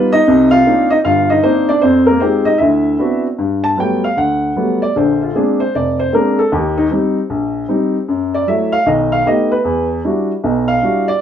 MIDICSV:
0, 0, Header, 1, 2, 480
1, 0, Start_track
1, 0, Tempo, 390625
1, 323, Time_signature, 4, 2, 24, 8
1, 13780, End_track
2, 0, Start_track
2, 0, Title_t, "Upright piano"
2, 0, Program_c, 0, 0
2, 0, Note_on_c, 0, 55, 56
2, 0, Note_on_c, 0, 59, 49
2, 0, Note_on_c, 0, 63, 48
2, 0, Note_on_c, 0, 65, 61
2, 144, Note_off_c, 0, 63, 0
2, 154, Note_on_c, 0, 75, 105
2, 163, Note_on_c, 0, 63, 80
2, 176, Note_off_c, 0, 55, 0
2, 178, Note_off_c, 0, 59, 0
2, 183, Note_off_c, 0, 65, 0
2, 337, Note_on_c, 0, 48, 73
2, 338, Note_on_c, 0, 36, 74
2, 599, Note_off_c, 0, 75, 0
2, 604, Note_off_c, 0, 63, 0
2, 626, Note_on_c, 0, 77, 102
2, 637, Note_on_c, 0, 65, 85
2, 744, Note_off_c, 0, 48, 0
2, 745, Note_off_c, 0, 36, 0
2, 817, Note_on_c, 0, 58, 54
2, 822, Note_on_c, 0, 60, 51
2, 826, Note_on_c, 0, 63, 60
2, 827, Note_on_c, 0, 62, 51
2, 1074, Note_off_c, 0, 77, 0
2, 1080, Note_off_c, 0, 65, 0
2, 1110, Note_off_c, 0, 63, 0
2, 1111, Note_on_c, 0, 75, 92
2, 1129, Note_on_c, 0, 63, 71
2, 1136, Note_off_c, 0, 58, 0
2, 1138, Note_off_c, 0, 60, 0
2, 1141, Note_off_c, 0, 62, 0
2, 1173, Note_off_c, 0, 75, 0
2, 1190, Note_off_c, 0, 63, 0
2, 1285, Note_on_c, 0, 43, 68
2, 1285, Note_on_c, 0, 77, 91
2, 1289, Note_on_c, 0, 31, 62
2, 1302, Note_on_c, 0, 65, 75
2, 1580, Note_off_c, 0, 65, 0
2, 1597, Note_on_c, 0, 75, 87
2, 1602, Note_off_c, 0, 77, 0
2, 1624, Note_on_c, 0, 63, 70
2, 1696, Note_off_c, 0, 43, 0
2, 1699, Note_off_c, 0, 31, 0
2, 1751, Note_off_c, 0, 63, 0
2, 1760, Note_on_c, 0, 58, 58
2, 1761, Note_on_c, 0, 72, 91
2, 1763, Note_on_c, 0, 60, 51
2, 1764, Note_on_c, 0, 62, 50
2, 1767, Note_off_c, 0, 75, 0
2, 1770, Note_on_c, 0, 63, 62
2, 2071, Note_off_c, 0, 62, 0
2, 2073, Note_on_c, 0, 74, 93
2, 2079, Note_off_c, 0, 72, 0
2, 2086, Note_off_c, 0, 58, 0
2, 2088, Note_off_c, 0, 60, 0
2, 2090, Note_on_c, 0, 62, 76
2, 2091, Note_off_c, 0, 63, 0
2, 2228, Note_off_c, 0, 74, 0
2, 2230, Note_on_c, 0, 72, 87
2, 2237, Note_off_c, 0, 62, 0
2, 2245, Note_on_c, 0, 41, 73
2, 2257, Note_on_c, 0, 60, 72
2, 2521, Note_off_c, 0, 72, 0
2, 2536, Note_off_c, 0, 60, 0
2, 2538, Note_on_c, 0, 70, 80
2, 2570, Note_on_c, 0, 58, 61
2, 2656, Note_off_c, 0, 41, 0
2, 2702, Note_on_c, 0, 72, 77
2, 2717, Note_off_c, 0, 58, 0
2, 2717, Note_off_c, 0, 70, 0
2, 2718, Note_on_c, 0, 63, 50
2, 2722, Note_on_c, 0, 56, 53
2, 2724, Note_on_c, 0, 65, 46
2, 2725, Note_on_c, 0, 60, 60
2, 2727, Note_on_c, 0, 67, 63
2, 2997, Note_off_c, 0, 72, 0
2, 3009, Note_off_c, 0, 60, 0
2, 3014, Note_on_c, 0, 75, 83
2, 3018, Note_off_c, 0, 63, 0
2, 3036, Note_on_c, 0, 63, 66
2, 3047, Note_off_c, 0, 56, 0
2, 3047, Note_off_c, 0, 65, 0
2, 3049, Note_off_c, 0, 67, 0
2, 3172, Note_on_c, 0, 76, 77
2, 3177, Note_off_c, 0, 75, 0
2, 3189, Note_off_c, 0, 63, 0
2, 3198, Note_on_c, 0, 64, 56
2, 3205, Note_on_c, 0, 38, 63
2, 3615, Note_off_c, 0, 38, 0
2, 3662, Note_off_c, 0, 64, 0
2, 3672, Note_on_c, 0, 59, 54
2, 3677, Note_on_c, 0, 60, 48
2, 3680, Note_on_c, 0, 62, 49
2, 3680, Note_on_c, 0, 66, 60
2, 3681, Note_on_c, 0, 64, 48
2, 3924, Note_off_c, 0, 76, 0
2, 4001, Note_off_c, 0, 59, 0
2, 4003, Note_off_c, 0, 60, 0
2, 4005, Note_off_c, 0, 62, 0
2, 4005, Note_off_c, 0, 64, 0
2, 4005, Note_off_c, 0, 66, 0
2, 4159, Note_on_c, 0, 43, 68
2, 4469, Note_on_c, 0, 81, 91
2, 4572, Note_off_c, 0, 43, 0
2, 4632, Note_off_c, 0, 81, 0
2, 4633, Note_on_c, 0, 54, 50
2, 4643, Note_on_c, 0, 55, 45
2, 4643, Note_on_c, 0, 59, 58
2, 4645, Note_on_c, 0, 57, 46
2, 4670, Note_on_c, 0, 79, 75
2, 4955, Note_off_c, 0, 79, 0
2, 4962, Note_off_c, 0, 54, 0
2, 4966, Note_off_c, 0, 55, 0
2, 4967, Note_off_c, 0, 59, 0
2, 4967, Note_on_c, 0, 77, 87
2, 4968, Note_off_c, 0, 57, 0
2, 5120, Note_on_c, 0, 38, 58
2, 5121, Note_off_c, 0, 77, 0
2, 5134, Note_on_c, 0, 78, 80
2, 5533, Note_off_c, 0, 38, 0
2, 5606, Note_on_c, 0, 54, 48
2, 5608, Note_on_c, 0, 57, 46
2, 5609, Note_on_c, 0, 55, 48
2, 5609, Note_on_c, 0, 59, 57
2, 5866, Note_off_c, 0, 78, 0
2, 5924, Note_on_c, 0, 74, 85
2, 5928, Note_off_c, 0, 54, 0
2, 5930, Note_off_c, 0, 55, 0
2, 5930, Note_off_c, 0, 57, 0
2, 5930, Note_off_c, 0, 59, 0
2, 6080, Note_off_c, 0, 74, 0
2, 6093, Note_on_c, 0, 34, 67
2, 6093, Note_on_c, 0, 50, 70
2, 6109, Note_on_c, 0, 72, 68
2, 6395, Note_off_c, 0, 72, 0
2, 6423, Note_on_c, 0, 65, 55
2, 6500, Note_off_c, 0, 50, 0
2, 6501, Note_off_c, 0, 34, 0
2, 6570, Note_off_c, 0, 65, 0
2, 6570, Note_on_c, 0, 56, 52
2, 6577, Note_on_c, 0, 58, 48
2, 6580, Note_on_c, 0, 60, 46
2, 6584, Note_on_c, 0, 62, 59
2, 6584, Note_on_c, 0, 68, 66
2, 6872, Note_off_c, 0, 68, 0
2, 6880, Note_on_c, 0, 72, 79
2, 6891, Note_off_c, 0, 56, 0
2, 6895, Note_off_c, 0, 58, 0
2, 6896, Note_off_c, 0, 60, 0
2, 6898, Note_off_c, 0, 62, 0
2, 7039, Note_off_c, 0, 72, 0
2, 7062, Note_on_c, 0, 29, 64
2, 7070, Note_on_c, 0, 74, 78
2, 7355, Note_off_c, 0, 74, 0
2, 7366, Note_on_c, 0, 72, 77
2, 7466, Note_off_c, 0, 29, 0
2, 7522, Note_off_c, 0, 72, 0
2, 7525, Note_on_c, 0, 56, 54
2, 7530, Note_on_c, 0, 60, 50
2, 7532, Note_on_c, 0, 58, 46
2, 7534, Note_on_c, 0, 62, 58
2, 7551, Note_on_c, 0, 70, 71
2, 7837, Note_off_c, 0, 70, 0
2, 7849, Note_on_c, 0, 69, 84
2, 7850, Note_off_c, 0, 56, 0
2, 7852, Note_off_c, 0, 60, 0
2, 7853, Note_off_c, 0, 58, 0
2, 7854, Note_off_c, 0, 62, 0
2, 8004, Note_off_c, 0, 69, 0
2, 8015, Note_on_c, 0, 39, 72
2, 8026, Note_on_c, 0, 67, 62
2, 8314, Note_off_c, 0, 67, 0
2, 8326, Note_on_c, 0, 63, 81
2, 8423, Note_off_c, 0, 39, 0
2, 8423, Note_off_c, 0, 63, 0
2, 8487, Note_on_c, 0, 55, 56
2, 8496, Note_on_c, 0, 60, 48
2, 8501, Note_on_c, 0, 63, 61
2, 8811, Note_off_c, 0, 55, 0
2, 8816, Note_off_c, 0, 60, 0
2, 8818, Note_off_c, 0, 63, 0
2, 8966, Note_on_c, 0, 34, 64
2, 9379, Note_off_c, 0, 34, 0
2, 9442, Note_on_c, 0, 55, 51
2, 9445, Note_on_c, 0, 60, 48
2, 9453, Note_on_c, 0, 63, 58
2, 9770, Note_off_c, 0, 55, 0
2, 9771, Note_off_c, 0, 60, 0
2, 9775, Note_off_c, 0, 63, 0
2, 9934, Note_on_c, 0, 42, 70
2, 10253, Note_on_c, 0, 74, 85
2, 10344, Note_off_c, 0, 42, 0
2, 10408, Note_off_c, 0, 74, 0
2, 10412, Note_on_c, 0, 54, 52
2, 10417, Note_on_c, 0, 57, 47
2, 10419, Note_on_c, 0, 76, 72
2, 10422, Note_on_c, 0, 64, 56
2, 10713, Note_off_c, 0, 76, 0
2, 10720, Note_on_c, 0, 77, 96
2, 10735, Note_off_c, 0, 54, 0
2, 10738, Note_off_c, 0, 57, 0
2, 10740, Note_off_c, 0, 64, 0
2, 10881, Note_off_c, 0, 77, 0
2, 10887, Note_on_c, 0, 51, 58
2, 10888, Note_on_c, 0, 35, 64
2, 10902, Note_on_c, 0, 75, 66
2, 11194, Note_off_c, 0, 75, 0
2, 11208, Note_on_c, 0, 77, 89
2, 11301, Note_off_c, 0, 35, 0
2, 11301, Note_off_c, 0, 51, 0
2, 11366, Note_off_c, 0, 77, 0
2, 11373, Note_on_c, 0, 57, 49
2, 11376, Note_on_c, 0, 59, 49
2, 11376, Note_on_c, 0, 63, 47
2, 11382, Note_on_c, 0, 67, 53
2, 11393, Note_on_c, 0, 75, 77
2, 11680, Note_off_c, 0, 75, 0
2, 11693, Note_on_c, 0, 71, 82
2, 11696, Note_off_c, 0, 57, 0
2, 11698, Note_off_c, 0, 59, 0
2, 11698, Note_off_c, 0, 63, 0
2, 11701, Note_off_c, 0, 67, 0
2, 11852, Note_on_c, 0, 40, 65
2, 12131, Note_off_c, 0, 71, 0
2, 12264, Note_off_c, 0, 40, 0
2, 12339, Note_on_c, 0, 55, 53
2, 12344, Note_on_c, 0, 62, 46
2, 12349, Note_on_c, 0, 64, 49
2, 12351, Note_on_c, 0, 66, 57
2, 12660, Note_off_c, 0, 55, 0
2, 12662, Note_off_c, 0, 62, 0
2, 12664, Note_off_c, 0, 64, 0
2, 12665, Note_off_c, 0, 66, 0
2, 12823, Note_on_c, 0, 47, 64
2, 12824, Note_on_c, 0, 35, 67
2, 13121, Note_on_c, 0, 77, 92
2, 13229, Note_off_c, 0, 47, 0
2, 13230, Note_off_c, 0, 35, 0
2, 13297, Note_on_c, 0, 55, 52
2, 13300, Note_on_c, 0, 62, 46
2, 13308, Note_on_c, 0, 64, 46
2, 13310, Note_on_c, 0, 66, 57
2, 13565, Note_off_c, 0, 77, 0
2, 13616, Note_on_c, 0, 74, 92
2, 13619, Note_off_c, 0, 55, 0
2, 13620, Note_off_c, 0, 62, 0
2, 13624, Note_off_c, 0, 64, 0
2, 13625, Note_off_c, 0, 66, 0
2, 13771, Note_off_c, 0, 74, 0
2, 13780, End_track
0, 0, End_of_file